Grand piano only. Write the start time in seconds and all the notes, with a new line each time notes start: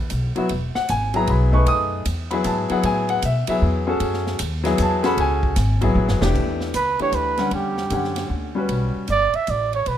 0.36 F#3 B3 E4 F#4
0.75 F#5
0.90 G#5
1.14 F#3 B3 E4 G#4 A#5
1.30 B5
1.52 A3 D#4 G#4 B4 C#6
1.68 D#6
2.31 F#3 B3 E4 G#4 B5
2.46 A5
2.70 F#3 B3 E4 G#4 F#5
2.85 G#5
3.10 F#5
3.25 E5
3.48 F#3 B3 E4 G#4 E5
3.87 C#4 F#4 G#4 A4
4.64 F#3 B3 E4 G#4
4.82 A5
5.03 C#4 F#4 G#4 A4 B5
5.20 G#5
5.81 F#3 B3 E4 G#4
6.21 E3 A3 D4 G4
6.99 E3 A3 D4 G4
7.38 D3 G3 C#4 F#5
7.91 D3 C#4 G4 F#5
8.55 G3 C#4 F#4 B4